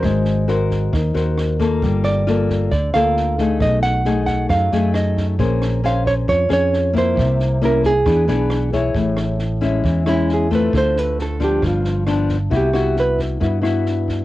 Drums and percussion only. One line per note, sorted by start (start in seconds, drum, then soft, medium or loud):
0.03 kick medium
0.03 cross-stick medium
0.03 snare soft
0.25 snare soft
0.48 snare soft
0.71 kick soft
0.71 snare soft
0.93 kick medium
0.93 cross-stick medium
0.93 snare soft
1.16 snare soft
1.38 cross-stick medium
1.38 snare soft
1.60 kick soft
1.60 snare soft
1.82 kick medium
1.82 snare soft
2.04 cross-stick medium
2.04 snare soft
2.27 snare soft
2.49 kick soft
2.49 snare soft
2.71 kick medium
2.71 snare soft
2.94 cross-stick medium
2.94 snare soft
3.17 snare soft
3.38 kick soft
3.38 snare soft
3.60 kick medium
3.60 cross-stick medium
3.60 snare soft
3.83 snare soft
4.05 snare soft
4.27 kick soft
4.27 snare soft
4.49 kick medium
4.49 cross-stick medium
4.49 snare soft
4.72 snare soft
4.94 cross-stick medium
4.94 snare soft
5.17 kick soft
5.17 snare soft
5.39 kick medium
5.39 snare soft
5.62 cross-stick medium
5.62 snare soft
5.85 snare soft
6.06 kick soft
6.06 snare soft
6.28 kick medium
6.28 snare soft
6.50 cross-stick medium
6.50 snare soft
6.73 snare soft
6.95 kick soft
6.95 snare soft
7.17 kick medium
7.17 cross-stick medium
7.17 snare soft
7.40 snare soft
7.62 snare soft
7.84 kick soft
7.84 snare soft
8.06 kick medium
8.06 cross-stick medium
8.06 snare soft
8.28 snare soft
8.50 cross-stick medium
8.50 snare soft
8.73 kick soft
8.73 snare soft
8.95 kick medium
8.95 snare soft
9.17 cross-stick medium
9.17 snare soft
9.39 snare soft
9.62 kick soft
9.62 snare soft
9.84 kick medium
9.84 snare soft
10.06 cross-stick medium
10.06 snare soft
10.29 snare soft
10.51 kick soft
10.51 snare soft
10.73 kick medium
10.73 cross-stick medium
10.73 snare soft
10.96 snare soft
11.19 snare soft
11.40 kick soft
11.40 snare soft
11.62 kick medium
11.62 cross-stick medium
11.62 snare soft
11.84 snare soft
12.07 cross-stick medium
12.07 snare soft
12.29 kick soft
12.29 snare soft
12.51 kick medium
12.51 snare soft
12.73 cross-stick medium
12.73 snare soft
12.96 snare soft
13.19 kick soft
13.19 snare soft
13.41 kick medium
13.41 snare soft
13.63 cross-stick medium
13.63 snare soft
13.86 snare soft
14.08 kick soft
14.08 snare soft